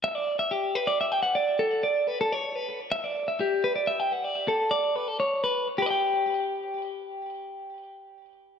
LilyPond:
\new Staff \with { instrumentName = "Clean electric guitar" } { \time 6/8 \key a \mixolydian \tempo 4. = 84 e''16 d''8 e''16 g'8 b'16 d''16 e''16 g''16 fis''16 d''16~ | d''16 a'8 d''8 b'16 a'16 cis''8 b'8 r16 | e''16 d''8 e''16 g'8 b'16 d''16 e''16 g''16 fis''16 d''16~ | d''16 a'8 d''8 b'16 a'16 cis''8 b'8 r16 |
<g' b' d'' g''>2.~ | <g' b' d'' g''>2. | }